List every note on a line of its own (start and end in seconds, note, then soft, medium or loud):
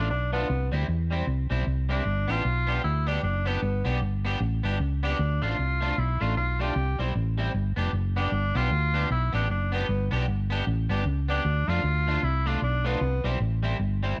0.00 0.11 A1 medium
0.10 0.44 B1 medium
0.10 0.32 D4 medium
0.32 0.46 A3 medium
0.32 0.70 B3 medium
0.32 0.46 D4 medium
0.32 0.47 F4 medium
0.50 0.69 C2 loud
0.72 0.86 D2 medium
0.72 0.85 G3 medium
0.72 0.85 C4 medium
0.72 0.86 E4 medium
0.88 1.22 E2 medium
1.11 1.24 G3 medium
1.11 1.25 C4 medium
1.11 1.25 E4 medium
1.27 1.47 C2 medium
1.50 1.64 B1 medium
1.50 1.63 G3 medium
1.50 1.64 C4 medium
1.50 1.64 E4 medium
1.67 2.00 C2 medium
1.89 2.02 G3 medium
1.89 2.03 C4 medium
1.89 2.32 D4 medium
1.89 2.03 E4 medium
2.05 2.25 G1 loud
2.28 2.43 A1 medium
2.28 2.41 B3 medium
2.28 2.42 D4 medium
2.28 2.83 F4 loud
2.28 2.42 G4 medium
2.45 2.78 B1 medium
2.67 2.80 B3 medium
2.67 2.81 D4 medium
2.67 2.81 G4 medium
2.84 3.17 D2 medium
2.84 3.09 E4 loud
3.06 3.20 B3 medium
3.06 3.23 D4 medium
3.06 3.20 D4 medium
3.06 3.21 G4 medium
3.23 3.57 F#1 medium
3.23 3.49 D4 medium
3.45 3.59 B3 medium
3.45 3.86 B3 medium
3.45 3.60 D4 medium
3.45 3.60 G4 loud
3.62 3.82 G1 loud
3.85 3.99 B1 medium
3.85 3.98 B3 medium
3.85 3.98 D4 medium
3.85 3.99 G4 medium
4.01 4.35 G1 medium
4.25 4.38 B3 medium
4.25 4.38 D4 medium
4.25 4.38 G4 medium
4.40 4.60 A1 loud
4.63 4.78 G1 medium
4.63 4.77 B3 medium
4.63 4.77 D4 medium
4.63 4.78 G4 medium
4.80 5.13 C#2 medium
5.03 5.16 B3 medium
5.03 5.44 D4 medium
5.03 5.16 D4 medium
5.03 5.17 G4 loud
5.19 5.39 D2 loud
5.42 5.56 A1 medium
5.42 5.55 A3 medium
5.42 5.55 D4 medium
5.42 6.00 F4 loud
5.42 5.56 F4 loud
5.59 5.92 C2 medium
5.81 5.94 A3 medium
5.81 5.95 D4 medium
5.81 5.95 F4 medium
5.98 6.17 B1 loud
5.98 6.23 E4 medium
6.20 6.37 A1 medium
6.20 6.33 A3 medium
6.20 6.34 D4 medium
6.20 6.36 F4 medium
6.20 6.34 F4 medium
6.37 6.70 B1 medium
6.37 6.63 F4 medium
6.59 6.72 A3 medium
6.59 6.73 D4 loud
6.59 6.73 F4 medium
6.59 7.00 G4 medium
6.76 6.95 C2 loud
6.99 7.13 B1 medium
6.99 7.12 G3 medium
6.99 7.12 C4 medium
6.99 7.12 E4 medium
7.15 7.48 A1 medium
7.38 7.51 G3 medium
7.38 7.51 C4 medium
7.38 7.52 E4 medium
7.54 7.74 G1 loud
7.76 7.91 F1 medium
7.76 7.90 B3 medium
7.76 7.90 D4 medium
7.76 7.91 G4 medium
7.93 8.26 F#1 medium
8.16 8.29 B3 medium
8.16 8.58 D4 medium
8.16 8.30 D4 medium
8.16 8.30 G4 medium
8.32 8.52 G1 medium
8.55 8.69 B1 medium
8.55 8.68 B3 medium
8.55 8.68 D4 medium
8.55 9.11 F4 loud
8.55 8.69 G4 medium
8.71 9.05 D2 medium
8.94 9.07 B3 medium
8.94 9.07 D4 medium
8.94 9.08 G4 loud
9.10 9.30 B1 medium
9.10 9.32 E4 loud
9.32 9.47 A1 medium
9.32 9.46 B3 medium
9.32 9.46 D4 medium
9.32 9.49 D4 medium
9.32 9.47 G4 medium
9.50 9.83 F#1 medium
9.50 9.71 D4 medium
9.72 9.85 B3 medium
9.72 10.10 B3 medium
9.72 9.86 D4 medium
9.72 9.86 G4 medium
9.89 10.08 G1 loud
10.11 10.25 B1 medium
10.11 10.24 B3 medium
10.11 10.25 D4 medium
10.11 10.25 G4 medium
10.28 10.61 G1 medium
10.50 10.63 B3 medium
10.50 10.64 D4 medium
10.50 10.64 G4 medium
10.67 10.86 A1 loud
10.89 11.03 G1 medium
10.89 11.02 B3 medium
10.89 11.03 D4 medium
10.89 11.03 G4 medium
11.06 11.39 C#2 medium
11.28 11.42 B3 medium
11.28 11.42 D4 medium
11.28 11.70 D4 loud
11.28 11.43 G4 medium
11.45 11.64 D2 loud
11.68 11.81 F2 medium
11.68 11.81 A3 medium
11.68 11.81 D4 medium
11.68 12.25 F4 loud
11.68 11.82 F4 medium
11.84 12.17 D2 medium
12.07 12.20 A3 medium
12.07 12.20 D4 medium
12.07 12.21 F4 medium
12.23 12.56 C2 loud
12.23 12.49 E4 loud
12.46 12.59 A3 medium
12.46 12.59 D4 medium
12.46 12.63 D4 medium
12.46 12.60 F4 medium
12.62 12.95 B1 medium
12.62 12.87 D4 medium
12.84 12.98 A3 medium
12.84 13.25 B3 medium
12.84 12.98 D4 medium
12.84 12.99 F4 medium
13.01 13.21 C2 loud
13.24 13.38 B1 medium
13.24 13.37 G3 medium
13.24 13.37 C4 medium
13.24 13.38 E4 medium
13.40 13.73 A1 medium
13.63 13.76 G3 medium
13.63 13.76 C4 medium
13.63 13.77 E4 medium
13.79 14.12 G1 medium
14.03 14.15 G3 medium
14.03 14.16 C4 medium
14.03 14.16 E4 medium